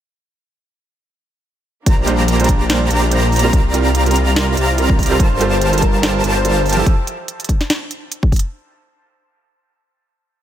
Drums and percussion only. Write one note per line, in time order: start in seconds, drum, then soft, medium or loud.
1.86 kick loud
1.86 closed hi-hat medium
2.07 closed hi-hat medium
2.28 closed hi-hat medium
2.40 closed hi-hat medium
2.44 closed hi-hat medium
2.49 kick medium
2.49 closed hi-hat medium
2.70 snare loud
2.70 closed hi-hat medium
2.91 closed hi-hat medium
3.11 closed hi-hat medium
3.32 closed hi-hat medium
3.32 open hi-hat medium
3.39 closed hi-hat medium
3.53 kick loud
3.53 closed hi-hat medium
3.74 closed hi-hat medium
3.95 closed hi-hat medium
4.06 closed hi-hat medium
4.11 closed hi-hat medium
4.16 closed hi-hat medium
4.36 snare loud
4.36 closed hi-hat medium
4.57 closed hi-hat medium
4.78 closed hi-hat medium
4.90 kick loud
4.99 kick medium
4.99 closed hi-hat medium
4.99 open hi-hat medium
5.06 closed hi-hat medium
5.20 kick loud
5.20 closed hi-hat medium
5.41 closed hi-hat medium
5.61 closed hi-hat medium
5.73 closed hi-hat soft
5.78 closed hi-hat medium
5.82 kick medium
5.82 closed hi-hat medium
6.03 snare loud
6.03 closed hi-hat medium
6.24 closed hi-hat medium
6.45 closed hi-hat medium
6.66 closed hi-hat medium
6.66 open hi-hat medium
6.73 closed hi-hat medium
6.86 kick loud
6.86 closed hi-hat medium
7.07 closed hi-hat medium
7.28 closed hi-hat medium
7.40 closed hi-hat soft
7.44 closed hi-hat medium
7.49 kick medium
7.49 closed hi-hat medium
7.61 snare soft
7.70 snare loud
7.70 closed hi-hat medium
7.91 closed hi-hat medium
8.12 closed hi-hat medium
8.23 kick loud
8.32 kick medium
8.32 open hi-hat medium
8.36 closed hi-hat medium
8.39 closed hi-hat medium